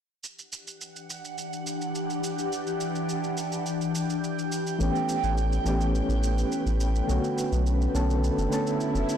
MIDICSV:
0, 0, Header, 1, 6, 480
1, 0, Start_track
1, 0, Tempo, 571429
1, 197, Time_signature, 4, 2, 24, 8
1, 7705, End_track
2, 0, Start_track
2, 0, Title_t, "Ambient pad"
2, 0, Program_c, 0, 92
2, 192, Note_on_c, 0, 78, 89
2, 194, Note_on_c, 0, 52, 76
2, 195, Note_on_c, 0, 62, 66
2, 195, Note_on_c, 0, 67, 72
2, 2096, Note_off_c, 0, 78, 0
2, 2116, Note_on_c, 0, 79, 85
2, 3762, Note_off_c, 0, 52, 0
2, 3762, Note_off_c, 0, 62, 0
2, 3762, Note_off_c, 0, 67, 0
2, 3798, Note_on_c, 0, 61, 77
2, 3800, Note_on_c, 0, 71, 70
2, 5923, Note_off_c, 0, 79, 0
2, 5936, Note_off_c, 0, 61, 0
2, 5937, Note_off_c, 0, 71, 0
2, 5954, Note_on_c, 0, 81, 89
2, 5956, Note_on_c, 0, 50, 81
2, 5957, Note_on_c, 0, 71, 73
2, 7705, Note_off_c, 0, 50, 0
2, 7705, Note_off_c, 0, 71, 0
2, 7705, Note_off_c, 0, 81, 0
2, 7705, End_track
3, 0, Start_track
3, 0, Title_t, "Synth keys"
3, 0, Program_c, 1, 88
3, 3961, Control_c, 1, 64, 127
3, 4019, Note_on_c, 1, 52, 75
3, 4027, Note_on_c, 1, 57, 66
3, 4037, Note_on_c, 1, 59, 72
3, 4046, Note_on_c, 1, 61, 67
3, 4055, Note_on_c, 1, 67, 78
3, 4721, Note_off_c, 1, 52, 0
3, 4724, Note_off_c, 1, 57, 0
3, 4730, Note_off_c, 1, 59, 0
3, 4734, Note_off_c, 1, 61, 0
3, 4739, Note_off_c, 1, 67, 0
3, 4740, Note_on_c, 1, 52, 82
3, 4750, Note_on_c, 1, 57, 79
3, 4758, Note_on_c, 1, 59, 79
3, 4767, Note_on_c, 1, 61, 73
3, 4776, Note_on_c, 1, 67, 91
3, 5921, Note_off_c, 1, 52, 0
3, 5926, Note_off_c, 1, 57, 0
3, 5930, Note_off_c, 1, 59, 0
3, 5935, Note_off_c, 1, 61, 0
3, 5939, Note_off_c, 1, 67, 0
3, 5939, Note_on_c, 1, 50, 74
3, 5947, Note_on_c, 1, 57, 68
3, 5958, Note_on_c, 1, 59, 65
3, 5966, Note_on_c, 1, 61, 69
3, 5970, Control_c, 1, 64, 0
3, 5975, Note_on_c, 1, 66, 82
3, 6094, Control_c, 1, 64, 127
3, 6641, Note_off_c, 1, 50, 0
3, 6645, Note_off_c, 1, 57, 0
3, 6650, Note_off_c, 1, 59, 0
3, 6654, Note_off_c, 1, 61, 0
3, 6659, Note_off_c, 1, 66, 0
3, 6668, Note_on_c, 1, 50, 76
3, 6674, Note_on_c, 1, 57, 73
3, 6678, Note_on_c, 1, 59, 70
3, 6682, Note_on_c, 1, 61, 74
3, 6686, Note_on_c, 1, 69, 88
3, 7124, Note_off_c, 1, 50, 0
3, 7132, Note_off_c, 1, 57, 0
3, 7134, Note_on_c, 1, 50, 89
3, 7135, Note_off_c, 1, 59, 0
3, 7137, Note_off_c, 1, 61, 0
3, 7138, Note_off_c, 1, 69, 0
3, 7144, Note_on_c, 1, 57, 80
3, 7154, Note_on_c, 1, 59, 82
3, 7162, Note_on_c, 1, 61, 79
3, 7172, Note_on_c, 1, 69, 102
3, 7705, Note_off_c, 1, 50, 0
3, 7705, Note_off_c, 1, 57, 0
3, 7705, Note_off_c, 1, 59, 0
3, 7705, Note_off_c, 1, 61, 0
3, 7705, Note_off_c, 1, 69, 0
3, 7705, End_track
4, 0, Start_track
4, 0, Title_t, "Analog synth bass"
4, 0, Program_c, 2, 38
4, 4035, Note_on_c, 2, 33, 98
4, 4118, Note_off_c, 2, 33, 0
4, 4397, Note_on_c, 2, 33, 89
4, 4692, Note_off_c, 2, 33, 0
4, 4749, Note_on_c, 2, 33, 93
4, 5050, Note_off_c, 2, 33, 0
4, 5112, Note_on_c, 2, 33, 92
4, 5410, Note_off_c, 2, 33, 0
4, 5596, Note_on_c, 2, 33, 83
4, 5892, Note_off_c, 2, 33, 0
4, 5957, Note_on_c, 2, 35, 95
4, 6039, Note_off_c, 2, 35, 0
4, 6319, Note_on_c, 2, 35, 90
4, 6613, Note_off_c, 2, 35, 0
4, 6674, Note_on_c, 2, 35, 89
4, 6973, Note_off_c, 2, 35, 0
4, 7038, Note_on_c, 2, 30, 78
4, 7116, Note_off_c, 2, 30, 0
4, 7516, Note_on_c, 2, 30, 81
4, 7595, Note_off_c, 2, 30, 0
4, 7705, End_track
5, 0, Start_track
5, 0, Title_t, "Swell"
5, 0, Program_c, 3, 103
5, 6915, Note_on_c, 3, 60, 70
5, 7705, Note_off_c, 3, 60, 0
5, 7705, End_track
6, 0, Start_track
6, 0, Title_t, "Drums"
6, 200, Note_on_c, 9, 82, 37
6, 284, Note_off_c, 9, 82, 0
6, 326, Note_on_c, 9, 82, 18
6, 410, Note_off_c, 9, 82, 0
6, 442, Note_on_c, 9, 82, 67
6, 526, Note_off_c, 9, 82, 0
6, 566, Note_on_c, 9, 82, 29
6, 650, Note_off_c, 9, 82, 0
6, 681, Note_on_c, 9, 82, 37
6, 765, Note_off_c, 9, 82, 0
6, 808, Note_on_c, 9, 82, 18
6, 892, Note_off_c, 9, 82, 0
6, 924, Note_on_c, 9, 82, 66
6, 1008, Note_off_c, 9, 82, 0
6, 1048, Note_on_c, 9, 82, 31
6, 1132, Note_off_c, 9, 82, 0
6, 1160, Note_on_c, 9, 82, 37
6, 1244, Note_off_c, 9, 82, 0
6, 1286, Note_on_c, 9, 82, 19
6, 1370, Note_off_c, 9, 82, 0
6, 1401, Note_on_c, 9, 82, 64
6, 1485, Note_off_c, 9, 82, 0
6, 1524, Note_on_c, 9, 82, 27
6, 1608, Note_off_c, 9, 82, 0
6, 1640, Note_on_c, 9, 82, 37
6, 1724, Note_off_c, 9, 82, 0
6, 1765, Note_on_c, 9, 82, 20
6, 1849, Note_off_c, 9, 82, 0
6, 1879, Note_on_c, 9, 82, 63
6, 1963, Note_off_c, 9, 82, 0
6, 2004, Note_on_c, 9, 82, 29
6, 2088, Note_off_c, 9, 82, 0
6, 2120, Note_on_c, 9, 82, 41
6, 2204, Note_off_c, 9, 82, 0
6, 2242, Note_on_c, 9, 82, 20
6, 2326, Note_off_c, 9, 82, 0
6, 2356, Note_on_c, 9, 82, 70
6, 2440, Note_off_c, 9, 82, 0
6, 2481, Note_on_c, 9, 82, 29
6, 2565, Note_off_c, 9, 82, 0
6, 2597, Note_on_c, 9, 82, 38
6, 2681, Note_off_c, 9, 82, 0
6, 2720, Note_on_c, 9, 82, 21
6, 2804, Note_off_c, 9, 82, 0
6, 2833, Note_on_c, 9, 82, 70
6, 2917, Note_off_c, 9, 82, 0
6, 2959, Note_on_c, 9, 82, 31
6, 3043, Note_off_c, 9, 82, 0
6, 3076, Note_on_c, 9, 82, 38
6, 3160, Note_off_c, 9, 82, 0
6, 3203, Note_on_c, 9, 82, 21
6, 3287, Note_off_c, 9, 82, 0
6, 3318, Note_on_c, 9, 82, 74
6, 3402, Note_off_c, 9, 82, 0
6, 3444, Note_on_c, 9, 82, 28
6, 3528, Note_off_c, 9, 82, 0
6, 3561, Note_on_c, 9, 82, 38
6, 3645, Note_off_c, 9, 82, 0
6, 3686, Note_on_c, 9, 82, 21
6, 3770, Note_off_c, 9, 82, 0
6, 3798, Note_on_c, 9, 82, 70
6, 3882, Note_off_c, 9, 82, 0
6, 3921, Note_on_c, 9, 82, 30
6, 4005, Note_off_c, 9, 82, 0
6, 4037, Note_on_c, 9, 82, 43
6, 4121, Note_off_c, 9, 82, 0
6, 4162, Note_on_c, 9, 82, 20
6, 4246, Note_off_c, 9, 82, 0
6, 4275, Note_on_c, 9, 82, 71
6, 4359, Note_off_c, 9, 82, 0
6, 4398, Note_on_c, 9, 82, 30
6, 4482, Note_off_c, 9, 82, 0
6, 4515, Note_on_c, 9, 82, 41
6, 4599, Note_off_c, 9, 82, 0
6, 4640, Note_on_c, 9, 82, 22
6, 4724, Note_off_c, 9, 82, 0
6, 4756, Note_on_c, 9, 82, 72
6, 4840, Note_off_c, 9, 82, 0
6, 4879, Note_on_c, 9, 82, 31
6, 4963, Note_off_c, 9, 82, 0
6, 4998, Note_on_c, 9, 82, 40
6, 5082, Note_off_c, 9, 82, 0
6, 5122, Note_on_c, 9, 82, 20
6, 5206, Note_off_c, 9, 82, 0
6, 5238, Note_on_c, 9, 82, 73
6, 5322, Note_off_c, 9, 82, 0
6, 5361, Note_on_c, 9, 82, 31
6, 5445, Note_off_c, 9, 82, 0
6, 5477, Note_on_c, 9, 82, 42
6, 5561, Note_off_c, 9, 82, 0
6, 5601, Note_on_c, 9, 82, 23
6, 5685, Note_off_c, 9, 82, 0
6, 5715, Note_on_c, 9, 82, 70
6, 5799, Note_off_c, 9, 82, 0
6, 5842, Note_on_c, 9, 82, 31
6, 5926, Note_off_c, 9, 82, 0
6, 5959, Note_on_c, 9, 82, 40
6, 6043, Note_off_c, 9, 82, 0
6, 6083, Note_on_c, 9, 82, 21
6, 6167, Note_off_c, 9, 82, 0
6, 6200, Note_on_c, 9, 82, 77
6, 6284, Note_off_c, 9, 82, 0
6, 6323, Note_on_c, 9, 82, 30
6, 6407, Note_off_c, 9, 82, 0
6, 6438, Note_on_c, 9, 82, 43
6, 6522, Note_off_c, 9, 82, 0
6, 6565, Note_on_c, 9, 82, 20
6, 6649, Note_off_c, 9, 82, 0
6, 6681, Note_on_c, 9, 82, 72
6, 6765, Note_off_c, 9, 82, 0
6, 6806, Note_on_c, 9, 82, 30
6, 6890, Note_off_c, 9, 82, 0
6, 6922, Note_on_c, 9, 82, 41
6, 7006, Note_off_c, 9, 82, 0
6, 7044, Note_on_c, 9, 82, 22
6, 7128, Note_off_c, 9, 82, 0
6, 7160, Note_on_c, 9, 82, 72
6, 7244, Note_off_c, 9, 82, 0
6, 7282, Note_on_c, 9, 82, 33
6, 7366, Note_off_c, 9, 82, 0
6, 7396, Note_on_c, 9, 82, 40
6, 7480, Note_off_c, 9, 82, 0
6, 7521, Note_on_c, 9, 82, 22
6, 7605, Note_off_c, 9, 82, 0
6, 7637, Note_on_c, 9, 82, 76
6, 7705, Note_off_c, 9, 82, 0
6, 7705, End_track
0, 0, End_of_file